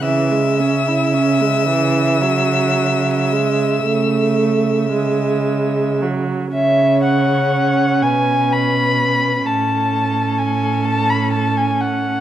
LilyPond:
<<
  \new Staff \with { instrumentName = "Violin" } { \time 12/8 \key cis \minor \tempo 4. = 40 e''1~ e''4. r8 | e''8 fis''4 gis''8 b''4 a''4 gis''8 a''16 b''16 a''16 gis''16 fis''8 | }
  \new Staff \with { instrumentName = "Violin" } { \time 12/8 \key cis \minor e'''1~ e'''4. r8 | cis''4. b'4. a'2. | }
  \new Staff \with { instrumentName = "Viola" } { \clef bass \time 12/8 \key cis \minor e16 gis16 cis'16 e'16 cis'16 gis16 e8 fis4 gis8 a4 gis4 fis8 | cis'2. cis'2. | }
  \new Staff \with { instrumentName = "Cello" } { \clef bass \time 12/8 \key cis \minor cis1. | cis4. b,4. a,2. | }
>>